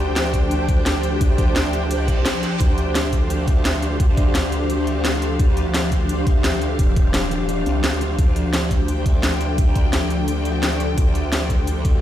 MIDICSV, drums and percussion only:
0, 0, Header, 1, 2, 480
1, 0, Start_track
1, 0, Key_signature, -1, "minor"
1, 0, Tempo, 348837
1, 1664, Time_signature, 4, 2, 24, 8
1, 16531, End_track
2, 0, Start_track
2, 0, Title_t, "Drums"
2, 223, Note_on_c, 9, 38, 115
2, 223, Note_on_c, 9, 42, 90
2, 360, Note_off_c, 9, 38, 0
2, 360, Note_off_c, 9, 42, 0
2, 463, Note_on_c, 9, 42, 65
2, 464, Note_on_c, 9, 36, 58
2, 600, Note_off_c, 9, 42, 0
2, 601, Note_off_c, 9, 36, 0
2, 703, Note_on_c, 9, 42, 92
2, 841, Note_off_c, 9, 42, 0
2, 943, Note_on_c, 9, 42, 67
2, 944, Note_on_c, 9, 36, 101
2, 1081, Note_off_c, 9, 36, 0
2, 1081, Note_off_c, 9, 42, 0
2, 1183, Note_on_c, 9, 38, 112
2, 1183, Note_on_c, 9, 42, 96
2, 1321, Note_off_c, 9, 38, 0
2, 1321, Note_off_c, 9, 42, 0
2, 1423, Note_on_c, 9, 42, 67
2, 1561, Note_off_c, 9, 42, 0
2, 1663, Note_on_c, 9, 42, 92
2, 1664, Note_on_c, 9, 36, 110
2, 1801, Note_off_c, 9, 36, 0
2, 1801, Note_off_c, 9, 42, 0
2, 1903, Note_on_c, 9, 42, 67
2, 1904, Note_on_c, 9, 36, 101
2, 2041, Note_off_c, 9, 36, 0
2, 2041, Note_off_c, 9, 42, 0
2, 2143, Note_on_c, 9, 38, 115
2, 2143, Note_on_c, 9, 42, 97
2, 2281, Note_off_c, 9, 38, 0
2, 2281, Note_off_c, 9, 42, 0
2, 2384, Note_on_c, 9, 42, 67
2, 2521, Note_off_c, 9, 42, 0
2, 2623, Note_on_c, 9, 42, 94
2, 2761, Note_off_c, 9, 42, 0
2, 2863, Note_on_c, 9, 42, 68
2, 2864, Note_on_c, 9, 36, 60
2, 3001, Note_off_c, 9, 36, 0
2, 3001, Note_off_c, 9, 42, 0
2, 3103, Note_on_c, 9, 38, 115
2, 3103, Note_on_c, 9, 42, 91
2, 3241, Note_off_c, 9, 38, 0
2, 3241, Note_off_c, 9, 42, 0
2, 3343, Note_on_c, 9, 38, 38
2, 3343, Note_on_c, 9, 42, 70
2, 3481, Note_off_c, 9, 38, 0
2, 3481, Note_off_c, 9, 42, 0
2, 3583, Note_on_c, 9, 42, 93
2, 3584, Note_on_c, 9, 36, 118
2, 3721, Note_off_c, 9, 36, 0
2, 3721, Note_off_c, 9, 42, 0
2, 3823, Note_on_c, 9, 42, 70
2, 3961, Note_off_c, 9, 42, 0
2, 4063, Note_on_c, 9, 38, 117
2, 4063, Note_on_c, 9, 42, 98
2, 4200, Note_off_c, 9, 38, 0
2, 4200, Note_off_c, 9, 42, 0
2, 4303, Note_on_c, 9, 42, 69
2, 4304, Note_on_c, 9, 36, 58
2, 4441, Note_off_c, 9, 36, 0
2, 4441, Note_off_c, 9, 42, 0
2, 4543, Note_on_c, 9, 42, 96
2, 4681, Note_off_c, 9, 42, 0
2, 4783, Note_on_c, 9, 42, 72
2, 4784, Note_on_c, 9, 36, 107
2, 4921, Note_off_c, 9, 36, 0
2, 4921, Note_off_c, 9, 42, 0
2, 5023, Note_on_c, 9, 38, 121
2, 5023, Note_on_c, 9, 42, 98
2, 5161, Note_off_c, 9, 38, 0
2, 5161, Note_off_c, 9, 42, 0
2, 5263, Note_on_c, 9, 42, 69
2, 5401, Note_off_c, 9, 42, 0
2, 5503, Note_on_c, 9, 36, 122
2, 5503, Note_on_c, 9, 42, 99
2, 5641, Note_off_c, 9, 36, 0
2, 5641, Note_off_c, 9, 42, 0
2, 5743, Note_on_c, 9, 36, 114
2, 5743, Note_on_c, 9, 42, 69
2, 5881, Note_off_c, 9, 36, 0
2, 5881, Note_off_c, 9, 42, 0
2, 5983, Note_on_c, 9, 38, 125
2, 5983, Note_on_c, 9, 42, 100
2, 6121, Note_off_c, 9, 38, 0
2, 6121, Note_off_c, 9, 42, 0
2, 6223, Note_on_c, 9, 42, 66
2, 6361, Note_off_c, 9, 42, 0
2, 6463, Note_on_c, 9, 42, 94
2, 6601, Note_off_c, 9, 42, 0
2, 6703, Note_on_c, 9, 42, 72
2, 6840, Note_off_c, 9, 42, 0
2, 6943, Note_on_c, 9, 38, 127
2, 6943, Note_on_c, 9, 42, 94
2, 7081, Note_off_c, 9, 38, 0
2, 7081, Note_off_c, 9, 42, 0
2, 7183, Note_on_c, 9, 42, 71
2, 7321, Note_off_c, 9, 42, 0
2, 7423, Note_on_c, 9, 36, 126
2, 7423, Note_on_c, 9, 42, 94
2, 7561, Note_off_c, 9, 36, 0
2, 7561, Note_off_c, 9, 42, 0
2, 7663, Note_on_c, 9, 42, 68
2, 7801, Note_off_c, 9, 42, 0
2, 7904, Note_on_c, 9, 38, 125
2, 7904, Note_on_c, 9, 42, 97
2, 8041, Note_off_c, 9, 38, 0
2, 8041, Note_off_c, 9, 42, 0
2, 8143, Note_on_c, 9, 36, 65
2, 8144, Note_on_c, 9, 42, 69
2, 8281, Note_off_c, 9, 36, 0
2, 8281, Note_off_c, 9, 42, 0
2, 8384, Note_on_c, 9, 42, 95
2, 8521, Note_off_c, 9, 42, 0
2, 8623, Note_on_c, 9, 42, 68
2, 8624, Note_on_c, 9, 36, 119
2, 8761, Note_off_c, 9, 36, 0
2, 8761, Note_off_c, 9, 42, 0
2, 8864, Note_on_c, 9, 38, 127
2, 8864, Note_on_c, 9, 42, 98
2, 9001, Note_off_c, 9, 38, 0
2, 9001, Note_off_c, 9, 42, 0
2, 9103, Note_on_c, 9, 42, 68
2, 9241, Note_off_c, 9, 42, 0
2, 9343, Note_on_c, 9, 42, 92
2, 9344, Note_on_c, 9, 36, 120
2, 9481, Note_off_c, 9, 36, 0
2, 9481, Note_off_c, 9, 42, 0
2, 9583, Note_on_c, 9, 42, 65
2, 9584, Note_on_c, 9, 36, 107
2, 9721, Note_off_c, 9, 36, 0
2, 9721, Note_off_c, 9, 42, 0
2, 9823, Note_on_c, 9, 38, 123
2, 9823, Note_on_c, 9, 42, 94
2, 9961, Note_off_c, 9, 38, 0
2, 9961, Note_off_c, 9, 42, 0
2, 10063, Note_on_c, 9, 42, 67
2, 10201, Note_off_c, 9, 42, 0
2, 10303, Note_on_c, 9, 42, 91
2, 10441, Note_off_c, 9, 42, 0
2, 10543, Note_on_c, 9, 42, 66
2, 10681, Note_off_c, 9, 42, 0
2, 10783, Note_on_c, 9, 38, 127
2, 10783, Note_on_c, 9, 42, 94
2, 10921, Note_off_c, 9, 38, 0
2, 10921, Note_off_c, 9, 42, 0
2, 11024, Note_on_c, 9, 42, 65
2, 11161, Note_off_c, 9, 42, 0
2, 11263, Note_on_c, 9, 42, 90
2, 11264, Note_on_c, 9, 36, 116
2, 11401, Note_off_c, 9, 36, 0
2, 11401, Note_off_c, 9, 42, 0
2, 11504, Note_on_c, 9, 42, 67
2, 11641, Note_off_c, 9, 42, 0
2, 11743, Note_on_c, 9, 38, 123
2, 11743, Note_on_c, 9, 42, 88
2, 11881, Note_off_c, 9, 38, 0
2, 11881, Note_off_c, 9, 42, 0
2, 11983, Note_on_c, 9, 42, 66
2, 11984, Note_on_c, 9, 36, 61
2, 12121, Note_off_c, 9, 36, 0
2, 12121, Note_off_c, 9, 42, 0
2, 12224, Note_on_c, 9, 42, 90
2, 12361, Note_off_c, 9, 42, 0
2, 12463, Note_on_c, 9, 42, 66
2, 12464, Note_on_c, 9, 36, 107
2, 12601, Note_off_c, 9, 36, 0
2, 12601, Note_off_c, 9, 42, 0
2, 12703, Note_on_c, 9, 38, 119
2, 12703, Note_on_c, 9, 42, 88
2, 12841, Note_off_c, 9, 38, 0
2, 12841, Note_off_c, 9, 42, 0
2, 12944, Note_on_c, 9, 42, 65
2, 13081, Note_off_c, 9, 42, 0
2, 13183, Note_on_c, 9, 42, 92
2, 13184, Note_on_c, 9, 36, 114
2, 13321, Note_off_c, 9, 36, 0
2, 13321, Note_off_c, 9, 42, 0
2, 13423, Note_on_c, 9, 42, 64
2, 13424, Note_on_c, 9, 36, 99
2, 13561, Note_off_c, 9, 36, 0
2, 13561, Note_off_c, 9, 42, 0
2, 13663, Note_on_c, 9, 38, 111
2, 13663, Note_on_c, 9, 42, 87
2, 13801, Note_off_c, 9, 38, 0
2, 13801, Note_off_c, 9, 42, 0
2, 13903, Note_on_c, 9, 42, 63
2, 14041, Note_off_c, 9, 42, 0
2, 14143, Note_on_c, 9, 42, 93
2, 14281, Note_off_c, 9, 42, 0
2, 14383, Note_on_c, 9, 42, 66
2, 14521, Note_off_c, 9, 42, 0
2, 14623, Note_on_c, 9, 38, 119
2, 14623, Note_on_c, 9, 42, 89
2, 14761, Note_off_c, 9, 38, 0
2, 14761, Note_off_c, 9, 42, 0
2, 14863, Note_on_c, 9, 42, 65
2, 15001, Note_off_c, 9, 42, 0
2, 15103, Note_on_c, 9, 36, 109
2, 15103, Note_on_c, 9, 42, 93
2, 15241, Note_off_c, 9, 36, 0
2, 15241, Note_off_c, 9, 42, 0
2, 15343, Note_on_c, 9, 42, 65
2, 15481, Note_off_c, 9, 42, 0
2, 15583, Note_on_c, 9, 38, 117
2, 15583, Note_on_c, 9, 42, 90
2, 15721, Note_off_c, 9, 38, 0
2, 15721, Note_off_c, 9, 42, 0
2, 15823, Note_on_c, 9, 36, 57
2, 15823, Note_on_c, 9, 42, 62
2, 15961, Note_off_c, 9, 36, 0
2, 15961, Note_off_c, 9, 42, 0
2, 16063, Note_on_c, 9, 42, 91
2, 16201, Note_off_c, 9, 42, 0
2, 16304, Note_on_c, 9, 36, 106
2, 16304, Note_on_c, 9, 42, 67
2, 16441, Note_off_c, 9, 36, 0
2, 16441, Note_off_c, 9, 42, 0
2, 16531, End_track
0, 0, End_of_file